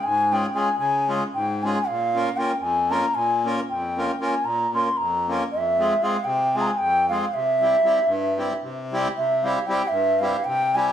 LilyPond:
<<
  \new Staff \with { instrumentName = "Bansuri" } { \time 7/8 \tempo 4 = 115 aes''8 g''8 aes''8 aes''8 r8 g''8 aes''8 | f''4 g''8 aes''8 bes''8 aes''8 r8 | g''4 aes''8 bes''8 c'''8 bes''8 r8 | e''4 f''8 g''8 aes''32 bes''32 aes''16 g''8 f''8 |
e''2~ e''8 r4 | e''8 f''8 g''8 e''8 f''8 g''8 aes''8 | }
  \new Staff \with { instrumentName = "Accordion" } { \time 7/8 r8 <aes des' f' aes'>8 <aes des' f' aes'>8 r8 <aes des' f' aes'>8 r8 <aes des' f' aes'>8 | r8 <bes des' f' bes'>8 <bes des' f' bes'>8 r8 <bes des' f' bes'>8 r8 <bes des' f' bes'>8 | r8 <bes des' f' bes'>8 <bes des' f' bes'>8 r8 <bes des' f' bes'>8 r8 <bes des' f' bes'>8 | r8 <aes c' f' aes'>8 <aes c' f' aes'>8 r8 <aes c' f' aes'>8 r8 <aes c' f' aes'>8 |
r8 <g c' e' g'>8 <g c' e' g'>8 r8 <g c' e' g'>8 r8 <g c' e' g'>8 | r8 <g c' e' g'>8 <g c' e' g'>8 r8 <g c' e' g'>8 r8 <g c' e' g'>8 | }
  \new Staff \with { instrumentName = "Accordion" } { \clef bass \time 7/8 aes,4 r8 des4 aes,4 | bes,4 r8 f,4 bes,4 | f,4 r8 bes,4 f,4 | f,4 r8 c4 f,4 |
c4 r8 g,4 c4 | c4 r8 g,4 c4 | }
>>